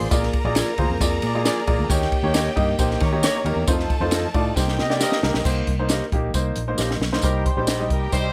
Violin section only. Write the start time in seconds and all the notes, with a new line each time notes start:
0.12 A#4 A#5
1.89 G4 G5
3.01 A#4 A#5
3.68 A4 A5
4.57 G4 G5
7.24 G4 G5